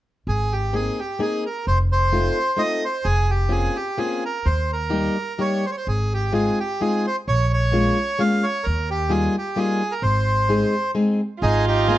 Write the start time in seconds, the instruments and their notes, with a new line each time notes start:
0.27 upright bass G#1, bandoneon G#4
0.53 bandoneon G4
0.73 steel-string acoustic guitar A#3 C4 D#4 G#4, bandoneon G#4
0.99 bandoneon G4
1.19 steel-string acoustic guitar A#3 C4 D#4 G#4, bandoneon G#4
1.46 bandoneon A#4
1.67 upright bass F1, bandoneon C5
1.92 bandoneon C5
2.12 steel-string acoustic guitar A3 C4 D#4 F4
2.57 steel-string acoustic guitar A3 C4 D#4 F4, bandoneon D#5
2.85 bandoneon C5
3.04 upright bass F1, bandoneon G#4
3.30 bandoneon G4
3.49 steel-string acoustic guitar A#3 C4 C#4 F4, bandoneon G#4
3.76 bandoneon G4
3.98 steel-string acoustic guitar A#3 C4 C#4 F4, bandoneon G#4
4.25 bandoneon A#4
4.46 upright bass D#2, bandoneon C5
4.73 bandoneon A#4
4.90 steel-string acoustic guitar G3 A#3 D#4 G4
5.38 steel-string acoustic guitar G3 A#3 D#4 G4, bandoneon C#5
5.66 bandoneon C5
5.71 bandoneon C#5
5.77 bandoneon C5
5.87 upright bass G#1, bandoneon G#4
6.14 bandoneon G4
6.32 steel-string acoustic guitar G#3 C4 D#4 F4, bandoneon G#4
6.60 bandoneon G4
6.81 steel-string acoustic guitar G#3 C4 D#4 F4, bandoneon G#4
7.07 bandoneon C5
7.28 upright bass A#1, bandoneon C#5
7.53 bandoneon C#5
7.72 steel-string acoustic guitar G#3 A#3 C#4 F4
8.19 steel-string acoustic guitar G#3 A#3 C#4 F4, bandoneon F5
8.43 bandoneon C#5
8.64 upright bass D#2, bandoneon A#4
8.91 bandoneon G4
9.09 steel-string acoustic guitar G3 A#3 D#4 F4, bandoneon G#4
9.38 bandoneon G4
9.56 steel-string acoustic guitar G3 A#3 D#4 F4, bandoneon G#4
9.91 bandoneon A#4
10.02 upright bass G#1, bandoneon C5
10.49 steel-string acoustic guitar G#3 C4 D#4 G#4
10.95 steel-string acoustic guitar G#3 C4 D#4 G#4
11.40 upright bass G#1, bandoneon D#4 G#4, violin F4
11.68 bandoneon D#4 G4
11.88 steel-string acoustic guitar A#3 C4 D#4 G#4, bandoneon D#4 G#4